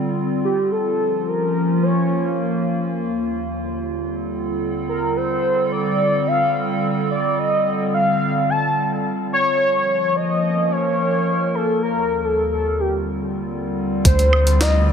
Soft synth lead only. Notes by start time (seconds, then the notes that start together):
0.44 G4
0.72 A4
1.27 A#4
1.83 C#5
4.89 A#4
5.17 C5
5.72 D5
6.27 F5
7.11 D5
7.38 D#5
7.94 F5
8.50 A5
9.33 C#5
10.16 D#5
10.72 C#5
11.55 A4
11.83 A#4
12.24 A4
12.52 A4
12.80 G4
14.05 C5
14.61 D#5
14.88 D5